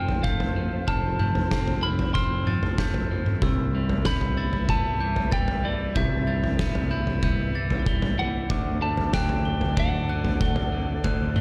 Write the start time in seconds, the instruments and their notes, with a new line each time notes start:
Already playing: picked electric bass F1, clean electric guitar F3 A3 C4, string section F3 A4 C5, lead electric guitar G5, glockenspiel F6
0.08 floor tom
0.23 clean electric guitar A3, lead electric guitar F5, glockenspiel G6, kick
0.40 floor tom
0.56 clean electric guitar F3
0.87 picked electric bass F1, clean electric guitar F3, lead electric guitar A5, glockenspiel F6, kick, floor tom
1.19 clean electric guitar A3, glockenspiel G6, mid tom
1.35 floor tom
1.51 clean electric guitar C4, kick, snare
1.68 floor tom
1.83 clean electric guitar E4, lead electric guitar B5, glockenspiel F6
1.99 floor tom
2.14 clean electric guitar C4, lead electric guitar C6, glockenspiel F6, kick
2.47 clean electric guitar F3, glockenspiel A6, mid tom
2.63 floor tom
2.78 clean electric guitar A3, glockenspiel G6, kick, snare
2.94 floor tom
3.11 clean electric guitar F3
3.26 mid tom
3.41 picked electric bass C2, clean electric guitar C3, string section G3 B4 E5, glockenspiel E6, kick, floor tom
3.75 clean electric guitar G3
3.89 floor tom
4.05 clean electric guitar B3, lead electric guitar B5, glockenspiel G6, kick, snare
4.21 floor tom
4.37 clean electric guitar E4, glockenspiel A6
4.53 floor tom
4.69 clean electric guitar B3, lead electric guitar A5, kick
5.00 clean electric guitar E3, glockenspiel G6
5.16 floor tom
5.32 clean electric guitar G3, lead electric guitar G5, glockenspiel A6, kick
5.48 floor tom
5.64 clean electric guitar E3, lead electric guitar D5
5.95 picked electric bass C2, clean electric guitar C3, lead electric guitar E5, glockenspiel G6, kick, floor tom
6.27 clean electric guitar G3, glockenspiel A6
6.44 floor tom
6.59 clean electric guitar B3, kick, snare
6.75 floor tom
6.91 clean electric guitar E4, glockenspiel G6
7.07 floor tom
7.23 clean electric guitar B3, glockenspiel G6, kick
7.55 clean electric guitar E3, glockenspiel A6
7.70 floor tom
7.86 clean electric guitar G3, glockenspiel G7, kick
8.02 floor tom
8.18 clean electric guitar E3, lead electric guitar F#5
8.50 picked electric bass D2, clean electric guitar D3, string section F#3 A3 D4 A4 D5, glockenspiel D6, kick, floor tom
8.81 clean electric guitar A3, lead electric guitar A5
8.97 floor tom
9.13 clean electric guitar D4, lead electric guitar G5, glockenspiel F#6, kick, snare
9.29 floor tom
9.45 glockenspiel G7
9.61 floor tom
9.77 clean electric guitar D4, lead electric guitar F#5, kick
10.09 clean electric guitar D3, glockenspiel F#6
10.25 floor tom
10.41 clean electric guitar A3, glockenspiel G7, kick
10.56 floor tom
10.73 clean electric guitar D3
11.04 picked electric bass D2, clean electric guitar D3, glockenspiel F#6, kick, floor tom
11.36 clean electric guitar A3, glockenspiel G7, mid tom